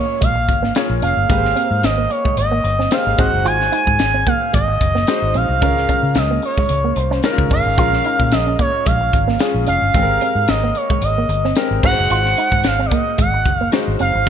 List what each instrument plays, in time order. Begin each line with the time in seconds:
Already playing: grand piano A#3 F4 G#4 C#5, analog synth lead C#5
0.21 fingered electric bass A#1, clean electric guitar G#3, analog synth lead F5, kick, closed hi-hat
0.36 muted clean electric guitar stroke
0.48 fingered electric bass G#1, kick, closed hi-hat
0.62 clean electric guitar A#3, snare
0.75 grand piano A#3 F4 G#4 C#5, snare, closed hi-hat
0.90 fingered electric bass A#1
1.02 fingered electric bass F1, clean electric guitar C#4, analog synth lead F5, closed hi-hat
1.17 fingered electric bass G1
1.29 fingered electric bass G#1, clean electric guitar G#3, grand piano A#3 G4 G#4 B4, kick, closed hi-hat
1.37 grand piano C5
1.43 muted clean electric guitar stroke, snare
1.56 clean electric guitar C4, closed hi-hat
1.71 fingered electric bass G#2
1.83 fingered electric bass G#1, analog synth lead D#5, snare, closed hi-hat
1.98 clean electric guitar A#3
2.10 analog synth lead C#5, muted clean electric guitar stroke, closed hi-hat
2.25 clean electric guitar G#3, kick
2.37 fingered electric bass G#1, analog synth lead D#5, closed hi-hat
2.51 clean electric guitar A#3
2.64 fingered electric bass G1, muted clean electric guitar stroke, closed hi-hat
2.79 clean electric guitar C4, snare
2.91 grand piano A#3 G4 G#4 C5, analog synth lead F5, snare, closed hi-hat
3.07 fingered electric bass G#1
3.18 fingered electric bass G#1, grand piano G#3 D#4 F#4 C5, clean electric guitar C4, analog synth lead F#5, kick, closed hi-hat
3.33 fingered electric bass F#1
3.45 fingered electric bass G#1, clean electric guitar F4, analog synth lead G#5, closed hi-hat
3.61 snare
3.72 clean electric guitar D#4, analog synth lead G#5, closed hi-hat
3.87 fingered electric bass G#2, muted clean electric guitar stroke, kick
3.99 fingered electric bass G#1, muted clean electric guitar stroke, snare, closed hi-hat
4.14 clean electric guitar C4
4.26 clean electric guitar A#3, analog synth lead F5, kick, closed hi-hat
4.53 fingered electric bass G#1, clean electric guitar G#3, analog synth lead D#5, kick, closed hi-hat
4.68 muted clean electric guitar stroke
4.81 fingered electric bass F#1, kick, closed hi-hat
4.95 clean electric guitar A#3, snare
5.07 grand piano G#3 D#4 F#4 C5, snare, closed hi-hat
5.22 fingered electric bass G#1
5.34 fingered electric bass A#1, clean electric guitar C4, analog synth lead F5, closed hi-hat
5.49 fingered electric bass C2
5.61 fingered electric bass C#2, grand piano G#3 C#4 F4 A#4, clean electric guitar C#4, kick, closed hi-hat
5.77 muted clean electric guitar stroke, snare
5.89 clean electric guitar C#4, kick, closed hi-hat
6.03 fingered electric bass C#3
6.15 fingered electric bass C#2, analog synth lead D#5, snare, closed hi-hat
6.31 clean electric guitar A#3
6.42 analog synth lead C#5, muted clean electric guitar stroke, open hi-hat
6.58 clean electric guitar G#3, kick
6.69 fingered electric bass C#2, closed hi-hat
6.84 clean electric guitar A#3
6.96 fingered electric bass C2, analog synth lead C5, muted clean electric guitar stroke, closed hi-hat
7.11 clean electric guitar C#4, snare
7.23 grand piano G#3 C#4 D#4 A#4, snare, closed hi-hat
7.31 grand piano F4
7.38 fingered electric bass C#2, kick
7.50 fingered electric bass G1, clean electric guitar C#4, analog synth lead F5, kick, open hi-hat
7.66 fingered electric bass G#1
7.78 fingered electric bass A#1, grand piano G#3 C#4 F4 A#4, clean electric guitar F4, kick, closed hi-hat
7.93 snare
8.05 clean electric guitar D#4, closed hi-hat
8.19 fingered electric bass A#2, muted clean electric guitar stroke, kick
8.32 fingered electric bass A#1, analog synth lead D#5, muted clean electric guitar stroke, snare, closed hi-hat
8.47 clean electric guitar C#4
8.59 clean electric guitar A#3, analog synth lead C#5, kick, closed hi-hat
8.86 fingered electric bass A#1, clean electric guitar G#3, analog synth lead F5, kick, closed hi-hat
9.01 muted clean electric guitar stroke
9.13 fingered electric bass G#1, kick, closed hi-hat
9.28 clean electric guitar A#3, snare
9.39 grand piano G#3 C#4 F4 G#4, snare, closed hi-hat
9.54 fingered electric bass A#1
9.67 fingered electric bass F1, clean electric guitar C#4, analog synth lead F5, closed hi-hat
9.82 fingered electric bass G1
9.94 fingered electric bass G#1, clean electric guitar G#3, grand piano G#3 C4 G4 A4, kick, closed hi-hat
10.02 grand piano A#4
10.10 muted clean electric guitar stroke
10.21 clean electric guitar C4, closed hi-hat
10.35 fingered electric bass G#2
10.48 fingered electric bass G#1, analog synth lead D#5, snare, closed hi-hat
10.63 clean electric guitar A#3
10.75 analog synth lead C#5, muted clean electric guitar stroke, closed hi-hat
10.90 clean electric guitar G#3, kick
11.02 fingered electric bass G#1, analog synth lead D#5, closed hi-hat
11.18 clean electric guitar A#3
11.29 fingered electric bass G1, muted clean electric guitar stroke, closed hi-hat
11.45 clean electric guitar C4, snare
11.56 grand piano G#3 C4 G4 A#4, snare, closed hi-hat
11.71 fingered electric bass G#1
11.83 fingered electric bass G#1, grand piano G#3 D#4 F#4 B4, clean electric guitar C4, analog synth lead F#5, kick, crash
11.91 grand piano C5
11.98 fingered electric bass F#1
12.10 fingered electric bass G#1, clean electric guitar F4, closed hi-hat
12.26 snare
12.37 clean electric guitar D#4, closed hi-hat
12.52 fingered electric bass G#2, muted clean electric guitar stroke, kick
12.64 fingered electric bass G#1, analog synth lead F5, muted clean electric guitar stroke, snare, closed hi-hat
12.79 clean electric guitar C4
12.86 analog synth lead D5
12.91 clean electric guitar A#3, analog synth lead D#5, kick, closed hi-hat
13.18 fingered electric bass G#1, clean electric guitar G#3, analog synth lead F#5, kick, closed hi-hat
13.34 muted clean electric guitar stroke
13.45 fingered electric bass F#1, kick, closed hi-hat
13.57 analog synth lead F5
13.61 clean electric guitar A#3
13.72 grand piano G#3 D#4 F#4 C5, snare, closed hi-hat
13.88 fingered electric bass G#1
13.99 fingered electric bass F#1, clean electric guitar C4, analog synth lead F5, closed hi-hat
14.15 fingered electric bass G#1
14.26 grand piano G#3